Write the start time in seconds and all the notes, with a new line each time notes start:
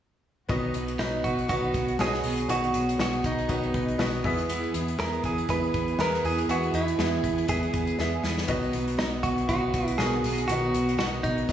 0.48 B1 B2 D#3 F#3 B3 D#4 F#4 B4 D#5, kick, closed hi-hat
0.74 B1 F#3 B3 D#4 B4, closed hi-hat
0.88 closed hi-hat
0.99 B1 F#3 B3 D#4 F#4 B4, snare
1.24 B1 F#3 B3 D#4 F#4 B4, kick, closed hi-hat
1.39 closed hi-hat
1.48 B1 B2 D#3 F#3 B3 D#4 F#4 B4 D#5, kick, closed hi-hat
1.74 B1 F#3 B3 D#4 B4, kick, closed hi-hat
1.88 closed hi-hat
1.99 B1 F#3 B3 D#4 F#4 G#4 B4 C#5, snare
2.06 D#5
2.13 snare, closed hi-hat
2.24 B1 F#3 B3 D#4 B4, open hi-hat
2.38 closed hi-hat
2.48 B1 B2 D#3 F#3 B3 D#4 F#4 G#4 B4 D#5, closed hi-hat
2.64 closed hi-hat
2.74 B1 F#3 B3 D#4 B4, closed hi-hat
2.89 closed hi-hat
2.98 B1 F#3 B3 D#4 F#4 B4 D#5, snare
3.13 closed hi-hat
3.24 B1 F#3 B3 D#4 B4, kick, closed hi-hat
3.39 closed hi-hat
3.48 B1 B2 D#3 F#3 B3 D#4 F#4 B4 D#5, kick, closed hi-hat
3.63 closed hi-hat
3.74 B1 F#3 B3 D#4 B4, kick, closed hi-hat
3.88 closed hi-hat
3.98 B1 F#3 B3 D#4 F#4 B4 D#5, snare
4.14 closed hi-hat
4.24 E2 E3 B3 E4 G#4 B4 E5, kick, open hi-hat
4.39 closed hi-hat
4.49 E3 G#3 B3 E4 B4, closed hi-hat
4.64 closed hi-hat
4.74 E2 B3 E4 B4, closed hi-hat
4.88 closed hi-hat
4.98 E2 G#3 B3 E4 G#4 A#4 B4 E5, snare
5.13 closed hi-hat
5.23 E2 B3 E4 G#4 B4, kick, closed hi-hat
5.38 closed hi-hat
5.49 E2 E3 G#3 B3 E4 G#4 B4 E5, kick, closed hi-hat
5.63 closed hi-hat
5.73 E2 B3 E4 B4, kick, closed hi-hat
5.88 closed hi-hat
5.98 E2 G#3 B3 E4 G#4 A#4 B4, snare
6.14 snare
6.24 E2 E3 B3 E4 G#4 B4, open hi-hat
6.38 closed hi-hat
6.48 E2 E3 G#3 B3 E4 F#4 G#4 B4 E5, closed hi-hat
6.63 closed hi-hat
6.73 E2 B3 E4 B4, closed hi-hat
6.88 closed hi-hat
6.98 E2 G#3 B3 E4 G#4 B4 E5, snare
7.24 E2 B3 E4 B4, kick, closed hi-hat
7.38 closed hi-hat
7.48 E2 E3 G#3 B3 E4 G#4 B4 E5, kick, closed hi-hat
7.63 closed hi-hat
7.73 E2 B3 E4 B4, kick, closed hi-hat
7.87 closed hi-hat
7.98 E2 G#3 B3 E4 G#4 B4 E5, snare
8.23 E2 B3 E4 B4, snare
8.38 snare
8.48 B1 B2 D#3 F#3 B3 D#4 F#4 B4 D#5, kick, closed hi-hat
8.63 closed hi-hat
8.73 B1 F#3 B3 D#4 B4, closed hi-hat
8.88 closed hi-hat
8.98 B1 F#3 B3 D#4 F#4 B4 D#5, snare
9.23 B1 F#3 B3 D#4 F#4 B4, kick, closed hi-hat
9.38 closed hi-hat
9.48 B1 B2 D#3 F#3 B3 D#4 F#4 B4 F#5, kick, closed hi-hat
9.74 B1 F#3 B3 D#4 B4, kick, closed hi-hat
9.88 closed hi-hat
9.98 B1 F#3 B3 D#4 F#4 G#4 A#4 B4, snare
10.13 closed hi-hat
10.24 B1 F#3 B3 D#4 B4, open hi-hat
10.38 closed hi-hat
10.48 B1 B2 D#3 F#3 B3 D#4 F#4 B4 D#5, closed hi-hat
10.74 B1 F#3 B3 D#4 B4, closed hi-hat
10.89 closed hi-hat
10.99 B1 F#3 B3 D#4 F#4 B4 D#5, snare
11.23 B1 F#3 B3 D#4 B4, kick, closed hi-hat
11.38 closed hi-hat
11.49 B1 B3 D#4, kick, closed hi-hat